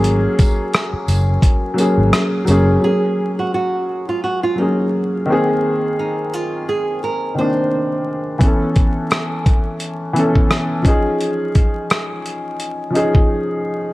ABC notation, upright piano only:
X:1
M:4/4
L:1/8
Q:"Swing 16ths" 1/4=86
K:Abmix
V:1 name="Upright piano"
[G,B,DA]3 z2 [G,B,DA]2 [G,B,DA] | [G,B,DA]4 z [G,B,DA]2 [E,B,CA]- | [E,B,CA]3 z2 [E,B,C=D]3 | [=E,=B,^C=A]4 z [E,B,CA]2 [F,D_E_A]- |
[F,DEA]3 z2 [F,DEA]3 |]